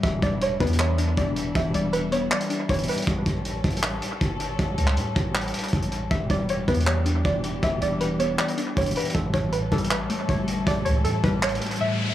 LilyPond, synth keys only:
\new Staff \with { instrumentName = "Synth keys" } { \clef bass \time 4/4 \key e \dorian \tempo 4 = 158 e8 g8 e8 b8 e8 d'8 e4 | e8 g8 e8 b8 e8 d'8 e4 | r1 | r1 |
e8 g8 e8 b8 e8 d'8 e4 | e8 g8 e8 b8 e8 d'8 e4 | a,8 e8 a,8 g8 a,8 a8 a,4 | a,8 e8 a,8 g8 a,8 a8 a,4 | }